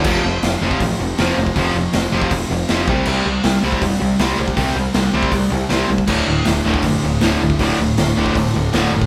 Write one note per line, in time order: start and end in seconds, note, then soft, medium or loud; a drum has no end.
0.04 0.17 F1 loud
0.04 0.23 F2 medium
0.04 0.23 C3 medium
0.04 0.23 F3 loud
0.04 kick loud
0.04 crash loud
0.24 0.37 F1 medium
0.24 0.41 F2 medium
0.24 0.42 C3 medium
0.42 0.55 F1 loud
0.42 0.60 F2 medium
0.42 0.60 C3 loud
0.42 snare loud
0.42 open hi-hat medium
0.61 0.74 F1 medium
0.61 0.80 F2 medium
0.61 0.80 C3 medium
0.61 0.81 F3 loud
0.71 kick medium
0.80 0.93 A1 medium
0.80 0.98 F2 medium
0.80 0.98 C3 medium
0.80 kick loud
0.80 open hi-hat medium
1.00 1.12 F1 medium
1.00 1.17 F2 medium
1.00 1.17 C3 medium
1.18 1.31 F1 medium
1.18 1.36 F2 medium
1.18 1.37 C3 medium
1.18 1.37 F3 medium
1.18 snare loud
1.18 open hi-hat medium
1.37 1.50 F1 medium
1.37 1.55 F2 medium
1.37 1.55 C3 medium
1.46 kick medium
1.56 1.69 F1 loud
1.56 1.74 F2 medium
1.56 1.75 C3 loud
1.56 1.75 F3 loud
1.56 kick loud
1.56 open hi-hat medium
1.75 1.87 F1 medium
1.75 1.92 F2 medium
1.75 1.92 C3 medium
1.93 2.07 F1 loud
1.93 2.11 F2 medium
1.93 2.11 C3 medium
1.93 snare loud
1.93 open hi-hat medium
2.12 2.25 F1 medium
2.12 2.30 F2 medium
2.12 2.30 C3 medium
2.12 2.31 F3 loud
2.22 kick medium
2.31 2.44 F1 medium
2.31 2.49 F2 medium
2.31 2.49 C3 medium
2.31 kick loud
2.31 open hi-hat medium
2.51 2.63 F1 medium
2.51 2.68 F2 medium
2.51 2.68 C3 medium
2.68 2.89 F1 medium
2.68 2.87 F2 medium
2.68 2.87 C3 medium
2.68 2.88 F3 loud
2.68 snare loud
2.68 open hi-hat medium
2.87 3.00 C2 medium
2.87 3.06 C3 medium
2.87 3.06 G3 medium
2.87 3.07 C4 medium
2.87 kick loud
3.05 3.20 C2 loud
3.05 3.25 C3 medium
3.05 3.25 G3 medium
3.05 3.25 C4 loud
3.05 crash loud
3.26 3.38 C2 loud
3.26 3.43 C3 medium
3.26 3.43 G3 medium
3.43 3.57 C2 loud
3.43 3.62 C3 medium
3.43 3.62 G3 medium
3.43 4.39 C4 medium
3.43 snare loud
3.43 open hi-hat medium
3.63 3.76 C2 medium
3.63 3.80 C3 medium
3.63 3.81 G3 loud
3.63 3.82 C4 loud
3.72 kick medium
3.82 3.94 E1 medium
3.82 3.99 C3 medium
3.82 3.99 G3 medium
3.82 kick loud
3.82 open hi-hat medium
4.00 4.14 C2 medium
4.00 4.18 C3 medium
4.00 4.18 G3 medium
4.19 4.32 C2 medium
4.19 4.36 C3 medium
4.19 4.37 G3 medium
4.19 4.38 C4 loud
4.19 snare loud
4.19 open hi-hat medium
4.38 4.51 C2 medium
4.38 4.55 C3 medium
4.38 4.56 G3 medium
4.38 4.96 C4 loud
4.48 kick medium
4.56 4.70 C2 loud
4.56 4.75 C3 medium
4.56 4.75 G3 loud
4.56 4.75 C4 loud
4.56 kick loud
4.56 open hi-hat medium
4.76 4.88 C2 medium
4.76 4.93 C3 medium
4.76 4.94 G3 medium
4.94 5.08 C2 loud
4.94 5.12 C3 medium
4.94 5.12 G3 medium
4.94 5.90 C4 medium
4.94 snare loud
4.94 open hi-hat medium
5.13 5.26 C2 medium
5.13 5.30 C3 medium
5.13 5.31 G3 loud
5.13 5.32 C4 loud
5.23 kick medium
5.31 5.45 C2 medium
5.31 5.49 C3 medium
5.31 5.49 G3 medium
5.31 kick loud
5.31 open hi-hat medium
5.51 5.64 C2 medium
5.51 5.68 C3 medium
5.51 5.68 G3 medium
5.69 5.83 C2 medium
5.69 5.88 C3 medium
5.69 5.88 G3 medium
5.69 5.89 C4 loud
5.69 snare loud
5.69 open hi-hat medium
5.89 6.02 C2 medium
5.89 6.06 C3 medium
5.89 6.07 G3 medium
5.98 kick medium
6.08 6.21 D1 loud
6.08 6.26 D2 medium
6.08 6.27 A2 medium
6.08 6.27 D3 loud
6.08 kick loud
6.08 crash loud
6.28 6.40 D1 medium
6.28 6.45 D2 medium
6.28 6.45 A2 medium
6.45 6.59 D1 loud
6.45 6.64 D2 medium
6.45 6.64 A2 loud
6.45 snare loud
6.45 open hi-hat medium
6.66 6.78 D1 medium
6.66 6.83 D2 medium
6.66 6.84 A2 medium
6.66 6.84 D3 loud
6.74 kick loud
6.82 6.96 F#1 loud
6.82 7.01 D2 medium
6.82 7.01 A2 medium
6.82 kick loud
6.82 open hi-hat medium
7.04 7.16 D1 medium
7.04 7.21 D2 medium
7.04 7.21 A2 medium
7.21 7.35 D1 medium
7.21 7.40 D2 medium
7.21 7.40 A2 medium
7.21 7.41 D3 loud
7.21 snare loud
7.21 open hi-hat medium
7.41 7.54 D1 medium
7.41 7.58 D2 medium
7.41 7.59 A2 medium
7.50 kick medium
7.59 7.72 D1 loud
7.59 7.78 D2 medium
7.59 7.78 A2 loud
7.59 7.78 D3 loud
7.59 kick loud
7.59 open hi-hat medium
7.79 7.91 D1 medium
7.79 7.96 D2 medium
7.79 7.96 A2 medium
7.98 8.10 D1 loud
7.98 8.15 D2 medium
7.98 8.15 A2 medium
7.98 snare loud
7.98 open hi-hat medium
8.17 8.29 D1 medium
8.17 8.34 D2 medium
8.17 8.34 A2 medium
8.17 8.35 D3 loud
8.26 kick medium
8.35 8.48 D1 loud
8.35 8.53 D2 medium
8.35 8.53 A2 medium
8.35 kick loud
8.35 open hi-hat medium
8.55 8.67 D1 medium
8.55 8.72 D2 medium
8.55 8.72 A2 medium
8.73 8.85 D1 loud
8.73 8.91 D2 medium
8.73 8.92 A2 loud
8.73 8.92 D3 loud
8.73 snare loud
8.73 open hi-hat medium
8.92 9.04 F#1 medium
8.92 9.06 D2 medium
8.92 9.06 A2 medium
9.02 kick medium